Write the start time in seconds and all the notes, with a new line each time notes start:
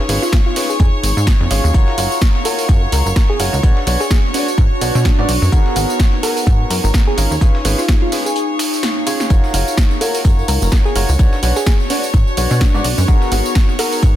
Already playing: D#4 G#4 C#5 C#6
0.09 G#1 C#4 F4 G#4 B4, open hi-hat, tambourine
0.22 F4, snare, tambourine
0.33 kick, snare, tambourine
0.46 F4
0.56 C#4 F4 G#4 B4 F5, open hi-hat, tambourine
0.70 G#4, tambourine
0.80 F2 G#4, kick, tambourine
1.03 G#1, open hi-hat, tambourine
1.17 G#2, tambourine
1.27 kick, snare, tambourine
1.40 F2
1.51 G#1 C#4 F4 G#4 C#5, open hi-hat, tambourine
1.64 D#2, tambourine
1.74 F#1 F4 F#4 A#4 C#5, kick, tambourine
1.88 snare
1.98 F#1 F4 F#4 A#4 C#5, open hi-hat, tambourine
2.12 tambourine
2.21 kick, snare, tambourine
2.35 snare
2.45 F4 F#4 A#4 C#5, snare, open hi-hat, tambourine
2.59 open hi-hat, tambourine
2.69 F#2, kick, tambourine
2.92 C#2 A#4, open hi-hat, tambourine
3.06 F#1 A#4, tambourine
3.16 kick, snare, tambourine
3.30 G#4
3.39 F#1 F4 F#4 A#4 C#5, open hi-hat, tambourine
3.53 C#2, tambourine
3.63 D4 F#4 B4 C#5, kick, tambourine
3.69 F#4
3.77 snare
3.87 B1 D4 F#4 B4 C#5, open hi-hat, tambourine
4.00 G#4, snare, tambourine
4.10 G#4, kick, snare, tambourine
4.34 D4 F#4 B4 C#5, open hi-hat, tambourine
4.48 B4, tambourine
4.58 G#2, kick, tambourine
4.81 B1 D4 F#4 B4 C#5, open hi-hat, tambourine
4.95 B2 D4 F#4 B4 C#5, tambourine
5.05 kick, snare, tambourine
5.18 G#2 D4 F#4 B4 D5
5.29 B1, open hi-hat, tambourine
5.42 F#2, tambourine
5.52 G#1 B3 D#4 F#4 G#4 A#4, kick, tambourine
5.65 G#4, snare
5.76 G#1 B3 F#4 G#4 A#4, open hi-hat, tambourine
5.90 tambourine
6.00 kick, snare, tambourine
6.13 snare
6.23 B3 F#4 G#4 A#4, snare, open hi-hat, tambourine
6.27 F#5
6.37 open hi-hat, tambourine
6.47 G#2, kick, tambourine
6.70 F#2 A#4, open hi-hat, tambourine
6.84 G#1 A#4, tambourine
6.94 kick, snare, tambourine
7.07 G#4
7.18 G#1 C#4 F4 G#4 A#4, open hi-hat, tambourine
7.31 D#2, tambourine
7.41 G#1 C#4 F4 G#4 B4, kick, tambourine
7.49 F5
7.55 snare
7.65 G#1 C#4 F4 G#4 B4, open hi-hat, tambourine
7.78 F4, snare, tambourine
7.88 kick, snare, tambourine
8.02 F4
8.12 C#4 F4 G#4 B4, open hi-hat, tambourine
8.25 G#4, tambourine
8.36 G#4, tambourine
8.59 snare, open hi-hat, tambourine
8.73 snare, tambourine
8.83 snare, tambourine
9.07 C#4 F4 G#4 C#5, open hi-hat, tambourine
9.20 snare, tambourine
9.30 F#1 F4 F#4 A#4 C#5 C#6, kick, tambourine
9.44 snare, tambourine
9.54 F#1 F4 F#4 A#4 C#5, open hi-hat, tambourine
9.68 tambourine
9.77 kick, snare, tambourine
9.91 snare, tambourine
10.01 F4 F#4 A#4 C#5, snare, open hi-hat, tambourine
10.14 open hi-hat, tambourine
10.25 F#2, kick, tambourine
10.39 tambourine
10.48 C#2 A#4, open hi-hat, tambourine
10.62 F#1 A#4, tambourine
10.72 kick, snare, tambourine
10.85 G#4, tambourine
10.96 F#1 F4 F#4 A#4 C#5, open hi-hat, tambourine
11.09 C#2, tambourine
11.19 B1 D4 F#4 B4 C#5, kick, tambourine
11.33 F#4, snare, tambourine
11.43 B1 D4 F#4 B4 C#5, open hi-hat, tambourine
11.56 G#4, snare, tambourine
11.66 G#4, kick, snare, tambourine
11.80 tambourine
11.90 D4 F#4 B4 C#5, open hi-hat, tambourine
12.03 B4, tambourine
12.14 G#2, kick, tambourine
12.27 tambourine
12.37 B1 D4 F#4 B4 C#5, open hi-hat, tambourine
12.51 B2 D4 F#4 B4 C#5, tambourine
12.61 kick, snare, tambourine
12.74 G#2 D4 F#4 B4 D5, tambourine
12.84 B1, open hi-hat, tambourine
12.98 F#2, tambourine
13.08 G#1 B3 D#4 F#4 G#4 A#4, kick, tambourine
13.14 G#4
13.21 C#5, snare, tambourine
13.32 G#1 B3 F#4 G#4 A#4, open hi-hat, tambourine
13.45 tambourine
13.55 kick, snare, tambourine
13.69 snare, tambourine
13.79 B3 F#4 G#4 A#4, snare, open hi-hat, tambourine
13.83 F#5
13.92 open hi-hat, tambourine
14.03 G#2, kick, tambourine